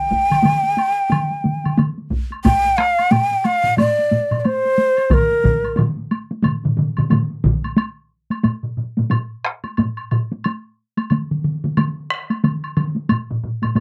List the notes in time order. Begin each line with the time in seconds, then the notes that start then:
Already playing: G5
0.11 taiko, taiko high
0.30 taiko mid, taiko high, high woodblock
0.43 taiko mid, taiko high, high woodblock
0.63 taiko high
0.77 taiko high, high woodblock
1.10 taiko mid, taiko high, high woodblock
1.30 taiko high
1.44 taiko mid, taiko high
1.64 taiko mid, taiko high, high woodblock
1.78 taiko mid, taiko high, high woodblock
1.98 taiko high
2.11 taiko, taiko high
2.31 taiko high, high woodblock
2.45 G5, taiko, taiko low-mid, taiko high, high woodblock
2.65 taiko high
2.77 F5, taiko rim, taiko high
2.98 taiko high, high woodblock
3.11 G5, taiko low-mid, taiko high, high woodblock
3.31 taiko high
3.44 F5, taiko high, high woodblock
3.64 taiko low-mid
3.78 D5, taiko low-mid, taiko high, high woodblock
3.99 taiko high
4.11 taiko low-mid, taiko high
4.31 taiko low-mid, taiko high, high woodblock
4.40 D5
4.45 C5, taiko high, high woodblock
4.66 taiko high
4.78 taiko high
4.97 taiko high, high woodblock
5.10 A#4, taiko, taiko low-mid, taiko mid, taiko high, high woodblock
5.31 taiko high
5.44 taiko, taiko low-mid, taiko mid, taiko high
5.64 taiko high, high woodblock
5.76 taiko low-mid, taiko mid, taiko high, high woodblock
5.97 taiko high
6.11 taiko high, high woodblock
6.31 taiko high
6.44 taiko low-mid, taiko mid, taiko high, high woodblock
6.64 taiko low-mid, taiko mid, taiko high
6.77 taiko low-mid, taiko mid, taiko high
6.97 taiko low-mid, taiko mid, taiko high, high woodblock
7.10 taiko low-mid, taiko mid, taiko high, high woodblock
7.30 taiko high
7.44 taiko, taiko low-mid, taiko mid, taiko high
7.64 taiko high, high woodblock
7.77 taiko high, high woodblock
8.30 taiko high, high woodblock
8.43 taiko low-mid, taiko high, high woodblock
8.64 taiko low-mid
8.78 taiko low-mid
8.97 taiko low-mid, taiko high
9.10 taiko low-mid, taiko high, high woodblock
9.45 taiko rim
9.64 taiko high, high woodblock
9.77 taiko low-mid, taiko high, high woodblock
9.97 high woodblock
10.11 taiko low-mid, high woodblock
10.32 taiko high
10.44 taiko high, high woodblock
10.98 taiko high, high woodblock
11.10 taiko mid, taiko high, high woodblock
11.31 taiko mid
11.44 taiko mid
11.64 taiko mid, taiko high
11.77 taiko mid, taiko high, high woodblock
12.10 taiko rim
12.30 taiko high, high woodblock
12.44 taiko mid, taiko high, high woodblock
12.64 high woodblock
12.77 taiko mid, high woodblock
12.96 taiko high
13.09 taiko low-mid, taiko high, high woodblock
13.31 taiko low-mid
13.43 taiko low-mid
13.62 taiko low-mid, taiko high, high woodblock
13.75 taiko low-mid, taiko high, high woodblock